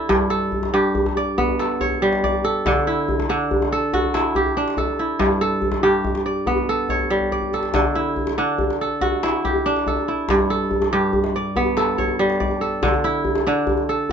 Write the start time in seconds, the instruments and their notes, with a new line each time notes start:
Already playing: kora D3 D4 E4 G4 A4
0.09 kora G2, djembe slap, djembe bass
0.30 kora A4
0.42 djembe slap
0.52 djembe bass
0.63 djembe slap, djembe tone
0.74 kora G2 G4
0.95 djembe bass
1.06 djembe slap, djembe tone
1.17 kora D5
1.38 kora B3, djembe bass
1.49 djembe tone
1.59 kora A4, djembe slap
1.81 kora C#5, djembe bass
1.92 djembe tone
2.02 kora G3
2.13 djembe slap
2.24 kora D5, djembe slap, djembe bass
2.35 djembe tone
2.44 kora A4
2.66 kora D3, djembe slap, djembe bass
2.77 djembe tone
2.87 kora E4
2.98 djembe slap
3.09 djembe bass
3.20 djembe slap, djembe tone
3.29 kora D3 D4
3.51 djembe bass
3.62 djembe slap, djembe tone
3.72 kora A4
3.93 kora F#4, djembe bass
4.04 djembe tone
4.14 kora E4, djembe slap
4.35 kora G4, djembe bass
4.46 djembe tone
4.57 kora D4
4.68 djembe slap
4.77 kora A4, djembe slap, djembe bass
4.88 djembe tone
4.99 kora E4
5.19 kora G2, djembe slap, djembe bass
5.30 djembe tone
5.41 kora A4
5.62 djembe bass
5.72 djembe slap, djembe tone
5.83 kora G2 G4
6.04 djembe slap, djembe bass
6.15 djembe slap, djembe tone
6.26 kora D5
6.46 kora B3, djembe bass
6.58 djembe slap, djembe tone
6.69 kora A4
6.89 kora C#5, djembe slap, djembe bass
7.00 djembe tone
7.10 kora G3
7.21 djembe bass
7.32 kora D5, djembe bass
7.42 djembe bass
7.53 kora A4, djembe slap
7.63 djembe slap
7.74 kora D3, djembe slap, djembe bass
7.85 djembe tone
7.95 kora E4
8.06 djembe slap
8.16 djembe bass
8.27 djembe slap, djembe tone
8.38 kora D3 D4
8.59 djembe bass
8.70 djembe slap, djembe tone
8.81 kora A4
9.01 kora F#4, djembe bass
9.13 djembe tone
9.23 kora E4, djembe slap
9.45 kora G4, djembe bass
9.56 djembe tone
9.66 kora D4
9.77 djembe slap
9.87 kora A4, djembe slap, djembe bass
9.97 djembe tone
10.08 kora E4
10.29 kora G2, djembe slap, djembe bass
10.40 djembe tone
10.50 kora A4
10.61 djembe slap
10.71 djembe bass
10.82 djembe slap, djembe tone
10.93 kora G2 G4
11.13 djembe bass
11.24 djembe slap, djembe tone
11.36 kora D5
11.56 kora B3, djembe bass
11.66 djembe tone
11.77 kora A4, djembe slap
11.98 kora C#5, djembe bass
12.08 djembe tone
12.19 kora G3
12.30 djembe slap
12.40 kora D5, djembe slap, djembe bass
12.51 djembe tone
12.61 kora A4
12.83 kora D3, djembe slap, djembe bass
12.94 djembe tone
13.04 kora E4
13.15 djembe slap
13.25 djembe bass
13.35 djembe slap, djembe tone
13.47 kora D3 D4
13.67 djembe bass
13.78 djembe tone
13.89 kora A4